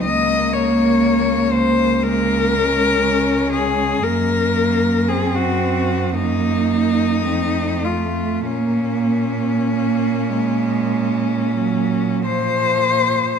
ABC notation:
X:1
M:4/4
L:1/16
Q:1/4=56
K:Bbm
V:1 name="Cello"
e2 d4 c2 B6 A2 | B4 A G3 E6 F2 | D12 c4 |]
V:2 name="Cello"
B,8 B,2 A,2 A,4 | B,4 C4 B,4 =A,4 | B,4 B,2 A,4 G,2 F,4 |]
V:3 name="Cello"
B,8 A,2 D6 | B,4 C4 B,4 C2 =A,2 | B,12- B,2 z2 |]
V:4 name="Cello" clef=bass
D,,16 | G,,12 F,,4 | B,,16 |]